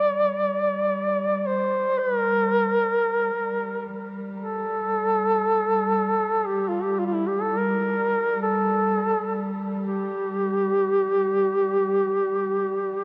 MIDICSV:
0, 0, Header, 1, 3, 480
1, 0, Start_track
1, 0, Key_signature, -2, "minor"
1, 0, Tempo, 500000
1, 12519, End_track
2, 0, Start_track
2, 0, Title_t, "Duduk"
2, 0, Program_c, 0, 69
2, 0, Note_on_c, 0, 74, 92
2, 1318, Note_off_c, 0, 74, 0
2, 1318, Note_on_c, 0, 74, 53
2, 1405, Note_on_c, 0, 72, 82
2, 1420, Note_off_c, 0, 74, 0
2, 1909, Note_on_c, 0, 71, 99
2, 1924, Note_off_c, 0, 72, 0
2, 2092, Note_off_c, 0, 71, 0
2, 2092, Note_on_c, 0, 70, 99
2, 3913, Note_off_c, 0, 70, 0
2, 4238, Note_on_c, 0, 69, 92
2, 6209, Note_on_c, 0, 67, 79
2, 6223, Note_off_c, 0, 69, 0
2, 6419, Note_on_c, 0, 65, 70
2, 6434, Note_off_c, 0, 67, 0
2, 6560, Note_on_c, 0, 67, 70
2, 6575, Note_off_c, 0, 65, 0
2, 6711, Note_on_c, 0, 65, 74
2, 6725, Note_off_c, 0, 67, 0
2, 6737, Note_off_c, 0, 65, 0
2, 6779, Note_on_c, 0, 65, 76
2, 6851, Note_on_c, 0, 64, 77
2, 6865, Note_off_c, 0, 65, 0
2, 6979, Note_on_c, 0, 67, 70
2, 6993, Note_off_c, 0, 64, 0
2, 7119, Note_on_c, 0, 69, 74
2, 7133, Note_off_c, 0, 67, 0
2, 7273, Note_on_c, 0, 70, 80
2, 7287, Note_off_c, 0, 69, 0
2, 8072, Note_off_c, 0, 70, 0
2, 8086, Note_on_c, 0, 69, 88
2, 9086, Note_off_c, 0, 69, 0
2, 9459, Note_on_c, 0, 67, 84
2, 12519, Note_off_c, 0, 67, 0
2, 12519, End_track
3, 0, Start_track
3, 0, Title_t, "Cello section"
3, 0, Program_c, 1, 48
3, 0, Note_on_c, 1, 55, 43
3, 12519, Note_off_c, 1, 55, 0
3, 12519, End_track
0, 0, End_of_file